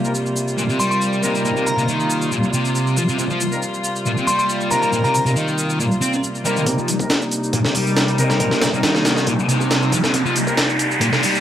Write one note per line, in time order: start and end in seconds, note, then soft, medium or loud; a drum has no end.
0.00 6.62 C3 medium
0.00 6.62 G3 medium
0.00 6.62 A#3 medium
0.00 0.12 D#4 medium
0.00 6.65 F4 medium
0.04 0.12 G3 medium
0.04 0.12 A#3 medium
0.04 0.12 C4 medium
0.04 0.12 A#4 medium
0.04 shaker soft
0.15 shaker soft
0.26 shaker soft
0.36 shaker medium
0.48 shaker soft
0.58 0.62 A#2 medium
0.58 shaker soft
0.70 0.79 C3 medium
0.70 shaker soft
0.79 1.22 G3 medium
0.79 0.87 C6 medium
0.79 shaker medium
0.91 0.98 C6 medium
0.91 shaker soft
1.01 shaker soft
1.13 shaker soft
1.23 1.34 C3 medium
1.23 1.75 G3 medium
1.23 1.75 A#3 loud
1.23 1.75 C4 medium
1.23 1.75 D#4 medium
1.23 1.75 A#4 loud
1.23 shaker medium
1.34 1.41 G3 medium
1.34 shaker soft
1.45 1.49 A#2 loud
1.45 shaker soft
1.56 1.66 C3 medium
1.56 shaker soft
1.67 2.10 A#5 medium
1.67 shaker medium
1.78 1.82 C3 medium
1.78 1.86 G3 medium
1.78 1.86 A#3 medium
1.78 1.86 C4 medium
1.78 1.86 D#4 medium
1.78 1.86 A#4 medium
1.78 shaker soft
1.88 2.31 D#3 medium
1.88 shaker soft
2.00 shaker soft
2.10 shaker medium
2.22 shaker soft
2.32 2.36 A#2 medium
2.32 shaker soft
2.43 shaker soft
2.53 2.96 C3 medium
2.53 shaker medium
2.65 shaker soft
2.75 shaker soft
2.87 shaker soft
2.97 3.02 F3 medium
2.97 shaker medium
3.09 3.18 C3 medium
3.09 shaker soft
3.19 3.24 C3 loud
3.19 shaker soft
3.30 3.40 F3 medium
3.30 shaker soft
3.41 shaker medium
3.52 3.60 G3 medium
3.52 3.60 A#3 medium
3.52 3.60 C4 medium
3.52 3.60 D#4 medium
3.52 3.60 A#4 medium
3.52 shaker soft
3.62 shaker soft
3.74 shaker soft
3.84 shaker medium
3.96 shaker soft
4.06 4.10 A#2 medium
4.06 shaker soft
4.17 4.27 C3 medium
4.17 shaker soft
4.27 4.70 G3 loud
4.27 4.35 C6 medium
4.27 shaker medium
4.39 4.45 C6 medium
4.39 shaker soft
4.49 shaker soft
4.61 shaker soft
4.71 4.81 C3 medium
4.71 5.23 G3 loud
4.71 5.23 A#3 loud
4.71 5.23 C4 medium
4.71 5.23 D#4 medium
4.71 5.23 A#4 loud
4.71 4.78 A#5 medium
4.71 shaker medium
4.82 4.89 G3 medium
4.82 4.89 A#5 medium
4.82 shaker soft
4.93 4.97 A#2 loud
4.93 shaker soft
5.04 5.14 C3 medium
5.04 5.11 A#5 medium
5.04 shaker soft
5.15 5.22 A#5 medium
5.15 shaker medium
5.26 5.30 C3 medium
5.26 5.34 G3 medium
5.26 5.34 A#3 medium
5.26 5.34 C4 medium
5.26 5.34 D#4 medium
5.26 5.34 A#4 medium
5.26 shaker soft
5.36 5.79 D#3 medium
5.36 shaker soft
5.48 shaker soft
5.58 shaker medium
5.70 shaker soft
5.80 5.84 A#2 loud
5.80 shaker soft
5.92 shaker soft
6.01 6.12 C4 loud
6.01 shaker medium
6.13 shaker soft
6.24 shaker soft
6.35 shaker soft
6.45 6.55 G3 medium
6.45 6.88 G3 loud
6.45 6.88 A#3 loud
6.45 6.88 C4 medium
6.45 6.88 D#4 medium
6.45 6.88 A#4 loud
6.45 shaker medium
6.56 6.60 D#3 medium
6.56 shaker soft
6.66 6.71 C3 medium
6.66 11.40 C3 medium
6.66 11.40 G3 medium
6.66 11.40 A#3 medium
6.66 11.40 D#4 medium
6.66 kick loud
6.66 closed hi-hat medium
6.66 riser medium
6.66 shaker soft
6.78 6.88 F3 medium
6.78 shaker soft
6.88 closed hi-hat medium
6.88 shaker medium
7.00 7.08 G3 medium
7.00 7.08 A#3 medium
7.00 7.08 C4 medium
7.00 7.08 D#4 medium
7.00 7.08 A#4 medium
7.00 kick medium
7.00 shaker soft
7.10 snare loud
7.10 closed hi-hat medium
7.10 shaker soft
7.22 shaker soft
7.32 closed hi-hat medium
7.32 shaker medium
7.44 shaker soft
7.53 7.58 A#2 medium
7.53 kick loud
7.53 closed hi-hat medium
7.53 shaker soft
7.65 7.75 C3 medium
7.65 snare soft
7.65 shaker soft
7.75 8.18 G3 medium
7.75 open hi-hat medium
7.75 shaker medium
7.87 shaker soft
7.96 snare loud
7.96 closed hi-hat medium
7.96 shaker soft
8.08 closed hi-hat soft
8.08 shaker soft
8.18 8.29 C3 medium
8.18 8.71 G3 loud
8.18 8.71 A#3 loud
8.18 8.71 C4 medium
8.18 8.71 D#4 medium
8.18 8.71 A#4 loud
8.18 closed hi-hat medium
8.18 shaker medium
8.30 8.37 G3 medium
8.30 snare soft
8.30 shaker soft
8.40 8.45 A#2 loud
8.40 kick loud
8.40 closed hi-hat medium
8.40 shaker soft
8.51 8.62 C3 medium
8.51 snare soft
8.51 shaker soft
8.62 snare loud
8.62 closed hi-hat medium
8.62 shaker medium
8.74 8.78 C3 medium
8.74 8.82 G3 medium
8.74 8.82 A#3 medium
8.74 8.82 C4 medium
8.74 8.82 D#4 medium
8.74 8.82 A#4 medium
8.74 shaker soft
8.83 9.26 D#3 medium
8.83 snare loud
8.83 closed hi-hat medium
8.83 shaker soft
8.95 snare medium
8.95 shaker soft
9.05 snare loud
9.05 closed hi-hat medium
9.05 shaker medium
9.16 snare medium
9.16 shaker soft
9.27 9.32 A#2 loud
9.27 kick loud
9.27 closed hi-hat medium
9.27 shaker soft
9.39 shaker soft
9.49 9.92 C3 medium
9.49 closed hi-hat medium
9.49 shaker medium
9.60 kick medium
9.60 shaker soft
9.71 snare loud
9.71 closed hi-hat medium
9.71 shaker soft
9.82 shaker soft
9.92 9.97 F3 medium
9.92 kick medium
9.92 closed hi-hat medium
9.92 shaker medium
10.04 10.13 C3 medium
10.04 snare medium
10.04 shaker soft
10.14 10.19 C3 loud
10.14 kick loud
10.14 closed hi-hat medium
10.14 shaker soft
10.26 10.36 F3 medium
10.26 shaker soft
10.36 closed hi-hat medium
10.36 shaker medium
10.47 10.56 G3 medium
10.47 10.56 A#3 medium
10.47 10.56 C4 medium
10.47 10.56 D#4 medium
10.47 10.56 A#4 medium
10.47 kick medium
10.47 shaker soft
10.57 snare loud
10.57 closed hi-hat medium
10.57 shaker soft
10.69 shaker soft
10.79 closed hi-hat medium
10.79 shaker medium
10.91 shaker soft
11.01 11.06 A#2 loud
11.01 kick loud
11.01 closed hi-hat medium
11.01 shaker soft
11.13 11.23 C3 medium
11.13 snare soft
11.13 shaker soft
11.23 11.40 G3 loud
11.23 open hi-hat medium
11.23 shaker medium
11.35 shaker soft